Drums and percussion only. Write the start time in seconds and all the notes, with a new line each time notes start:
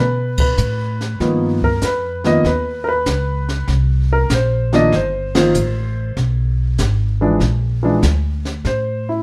0.38 kick, ride
0.58 hi-hat pedal
1.01 snare
1.20 brush sweep, kick, snare
1.63 kick
1.82 kick, snare, hi-hat pedal
2.24 snare
2.44 brush sweep, kick, snare
3.06 kick, snare, hi-hat pedal
3.49 snare
3.68 brush sweep, kick, snare
4.30 kick, snare, hi-hat pedal
4.73 snare
4.92 brush sweep, kick, snare
5.35 snare, ride
5.54 hi-hat pedal
6.17 brush sweep, kick, snare
6.78 kick, snare, hi-hat pedal
7.40 brush sweep, kick, snare
8.02 kick, snare, hi-hat pedal
8.45 snare
8.65 brush sweep, kick, snare